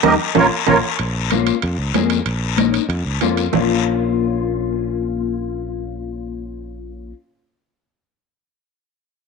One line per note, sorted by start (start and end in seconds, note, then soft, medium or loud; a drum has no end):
0.03 0.16 D#2 medium
0.03 0.14 G3 medium
0.03 0.14 A#3 medium
0.03 0.14 D#4 medium
0.03 0.14 G4 loud
0.03 0.14 A#4 loud
0.03 0.15 D#5 loud
0.03 low conga medium
0.03 high timbale loud
0.03 long guiro loud
0.35 0.48 A#1 loud
0.35 0.45 A#3 loud
0.35 0.45 C#4 loud
0.35 0.45 F4 loud
0.35 0.47 F4 loud
0.35 0.47 A#4 loud
0.35 0.47 C#5 loud
0.35 low conga loud
0.35 high timbale medium
0.67 0.80 A#1 loud
0.67 0.78 A#3 medium
0.67 0.78 C#4 medium
0.67 0.77 F4 medium
0.67 0.78 F4 medium
0.67 0.78 A#4 medium
0.67 0.78 C#5 medium
0.67 low conga medium
0.67 high timbale medium
0.67 long guiro loud
0.99 1.50 A#1 loud
0.99 high conga soft
0.99 high timbale medium
0.99 long guiro medium
1.31 1.53 A#3 medium
1.31 1.54 C#4 medium
1.31 1.54 F4 medium
1.31 high conga medium
1.31 high timbale medium
1.31 short guiro medium
1.47 high timbale medium
1.47 short guiro medium
1.62 1.76 F2 loud
1.62 high conga soft
1.62 high timbale medium
1.62 long guiro medium
1.78 1.91 C#2 medium
1.94 2.20 F2 medium
1.94 2.17 A#3 medium
1.94 2.17 C#4 medium
1.94 2.17 G#4 medium
1.94 high conga medium
1.94 high timbale medium
1.94 short guiro medium
2.10 high timbale medium
2.10 short guiro medium
2.26 2.77 A#1 medium
2.26 high conga soft
2.26 high timbale medium
2.26 long guiro medium
2.57 2.80 A#3 medium
2.57 2.80 C#4 medium
2.57 2.81 D#4 medium
2.57 high conga medium
2.57 high timbale medium
2.57 short guiro medium
2.74 high timbale medium
2.74 short guiro medium
2.89 3.02 F2 loud
2.89 high conga soft
2.89 high timbale medium
2.89 long guiro medium
3.05 3.18 C#2 medium
3.21 3.48 F2 medium
3.21 3.44 A#3 medium
3.21 3.44 C#4 medium
3.21 3.44 F4 medium
3.21 high conga medium
3.21 high timbale medium
3.21 low timbale medium
3.21 short guiro medium
3.37 high timbale medium
3.37 short guiro medium
3.52 7.12 A#1 medium
3.52 7.09 A#3 medium
3.52 7.11 C#4 medium
3.52 7.13 F4 medium
3.52 low conga medium
3.52 low timbale medium
3.52 long guiro medium